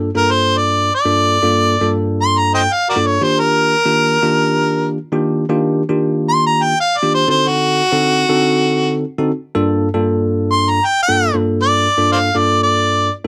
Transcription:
0.15 0.90 G2 medium
0.15 0.90 A#3 medium
0.15 0.90 D4 medium
0.15 0.89 F4 medium
0.15 0.90 A4 medium
0.15 0.32 A#4 loud
0.31 0.59 C5 loud
0.57 0.92 D5 medium
0.95 1.92 D5 loud
1.05 1.37 G2 medium
1.05 1.37 A#3 medium
1.05 1.37 D4 medium
1.05 1.37 F4 medium
1.05 1.37 A4 medium
1.43 1.75 G2 medium
1.43 1.75 A#3 medium
1.43 1.75 D4 medium
1.43 1.75 F4 medium
1.43 1.75 A4 medium
1.81 2.66 G2 medium
1.81 2.66 A#3 medium
1.81 2.66 D4 medium
1.81 2.66 F4 medium
1.81 2.66 A4 medium
2.21 2.40 C6 loud
2.38 2.54 A#5 medium
2.54 2.62 C5 medium
2.54 2.61 D#5 medium
2.54 2.74 G5 medium
2.72 2.88 F5 medium
2.89 2.98 F#4 medium
2.89 2.96 A#4 medium
2.89 3.08 D5 medium
2.96 3.17 G2 medium
2.96 3.17 A#3 medium
2.96 3.17 D4 medium
2.96 3.17 F4 medium
2.96 3.17 A4 medium
3.06 3.25 C#5 medium
3.21 3.74 D#3 medium
3.21 3.74 A#3 medium
3.21 3.75 D4 medium
3.21 3.74 F4 medium
3.21 3.74 G4 medium
3.21 3.41 C5 medium
3.40 4.88 A#4 loud
3.85 4.17 D#3 medium
3.85 4.17 A#3 medium
3.85 4.17 D4 medium
3.85 4.17 F4 medium
3.85 4.17 G4 medium
4.22 4.97 D#3 medium
4.22 4.97 A#3 medium
4.22 4.97 D4 medium
4.22 4.97 F4 medium
4.22 4.97 G4 medium
5.12 5.44 D#3 medium
5.12 5.44 A#3 medium
5.12 5.44 D4 medium
5.12 5.44 F4 medium
5.12 5.44 G4 loud
5.49 5.82 D#3 loud
5.49 5.82 A#3 medium
5.49 5.82 D4 medium
5.49 5.82 F4 medium
5.49 5.82 G4 loud
5.89 6.73 D#3 medium
5.89 6.73 A#3 medium
5.89 6.73 D4 medium
5.89 6.73 F4 medium
5.89 6.73 G4 medium
6.29 6.44 C6 loud
6.47 6.64 A#5 medium
6.63 6.78 G5 loud
6.80 6.99 F5 loud
6.97 7.12 D5 medium
7.03 7.24 D#3 medium
7.03 7.24 A#3 medium
7.03 7.24 D4 medium
7.03 7.24 F4 medium
7.03 7.24 G4 medium
7.14 7.29 C5 loud
7.28 7.81 D3 medium
7.28 7.81 C4 medium
7.28 7.81 D#4 medium
7.28 7.81 F#4 medium
7.28 7.81 A4 medium
7.28 7.49 C5 loud
7.48 8.95 F#4 loud
7.92 8.23 D3 medium
7.92 8.23 C4 medium
7.92 8.24 D#4 medium
7.92 8.24 F#4 medium
7.92 8.24 A4 medium
8.29 9.03 D3 medium
8.29 9.03 C4 medium
8.29 9.03 D#4 medium
8.29 9.04 F#4 medium
8.29 9.04 A4 loud
9.18 9.31 D3 medium
9.18 9.31 C4 medium
9.18 9.31 D#4 medium
9.18 9.31 F#4 medium
9.18 9.31 A4 loud
9.55 9.88 G2 loud
9.55 9.88 A#3 medium
9.55 9.88 D4 medium
9.55 9.88 F4 medium
9.55 9.88 A4 loud
9.94 10.78 G2 medium
9.94 10.79 A#3 medium
9.94 10.79 D4 medium
9.94 10.79 F4 medium
9.94 10.78 A4 loud
10.52 10.71 C6 loud
10.70 10.87 A#5 medium
10.85 11.00 G5 loud
11.02 11.34 G5 loud
11.08 11.30 G2 medium
11.08 11.30 A#3 medium
11.08 11.30 D4 medium
11.08 11.30 F4 medium
11.08 11.30 A4 medium
11.34 11.87 G2 medium
11.34 11.87 A#3 medium
11.34 11.87 D4 medium
11.34 11.87 F4 medium
11.34 11.87 A4 medium
11.62 12.10 D5 loud
11.97 12.29 G2 medium
11.97 12.29 A#3 medium
11.97 12.29 D4 medium
11.97 12.29 F4 medium
11.97 12.29 A4 medium
12.12 12.19 C5 medium
12.12 12.19 D5 medium
12.12 12.39 F5 medium
12.35 13.09 G2 medium
12.35 13.09 A#3 medium
12.35 13.09 D4 medium
12.35 13.09 F4 medium
12.35 13.09 A4 medium
12.35 12.61 D5 medium
12.63 13.11 D5 medium

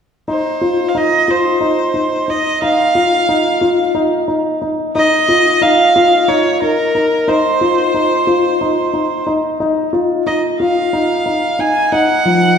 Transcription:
0.28 0.58 D#4 medium
0.28 0.90 C5 medium
0.61 0.91 F4 medium
0.89 0.99 F5 soft
0.95 1.25 D#4 medium
0.95 1.32 D#5 medium
1.28 1.58 F4 medium
1.28 2.31 C5 medium
1.61 1.91 D#4 medium
1.94 2.24 D#4 medium
2.28 2.58 D#4 medium
2.28 2.62 D#5 medium
2.62 2.91 D#4 medium
2.62 3.92 F5 medium
2.95 3.25 F4 medium
3.29 3.58 D#4 medium
3.61 3.91 F4 medium
3.95 4.24 D#4 medium
4.28 4.58 D#4 medium
4.62 4.91 D#4 medium
4.95 5.25 D#4 medium
4.95 5.64 D#5 medium
5.29 5.58 F4 medium
5.62 5.91 D#4 medium
5.62 6.30 F5 medium
5.96 6.25 F4 medium
6.28 6.58 D#4 medium
6.28 6.62 C#5 medium
6.62 6.91 D#4 medium
6.62 7.30 A#4 medium
6.95 7.24 D#4 medium
7.28 7.57 D#4 medium
7.28 9.28 C5 medium
7.61 7.90 F4 medium
7.94 8.24 D#4 medium
8.27 8.57 F4 medium
8.61 8.90 D#4 medium
8.94 9.23 D#4 soft
9.27 9.56 D#4 medium
9.60 9.90 D#4 medium
9.93 10.22 F4 medium
10.27 10.56 D#4 medium
10.27 10.42 D#5 medium
10.60 10.89 F4 medium
10.60 11.62 F5 medium
10.93 11.22 D#4 medium
11.26 11.55 D#4 medium
11.59 11.88 D#4 medium
11.59 11.93 G#5 medium
11.92 12.22 D#4 medium
11.92 12.58 F#5 medium
12.25 12.55 F3 medium

